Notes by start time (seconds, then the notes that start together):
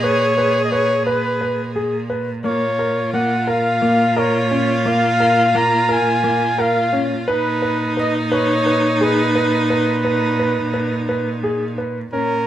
Already playing: A#2 G#4
0.03 B4 C#5
0.38 B4
0.64 D#5
0.71 B4 C#5
1.06 B4
1.41 B4
1.76 G#4
2.10 B4
2.44 A#2 A#3 F4 C#5
2.79 A#4
3.13 A#3 F#5
3.47 A#4 F5
3.82 A#3
4.16 A#4 C#5
4.51 C#4
4.85 A#3 F5
5.20 A#4
5.55 A#3 A#5
5.89 A#4 G#5
6.24 A#3
6.58 A#4 F5
6.93 C#4
7.28 A#2 D#4 B4
7.62 B4
7.97 B4 D#5
8.32 B4 C#5
8.66 B4
9.01 G#4 B4
9.35 B4
9.70 B4
10.05 B4
10.39 B4
10.74 B4
11.09 B4
11.43 G#4
11.78 B4
12.13 A#2 C#4 A#4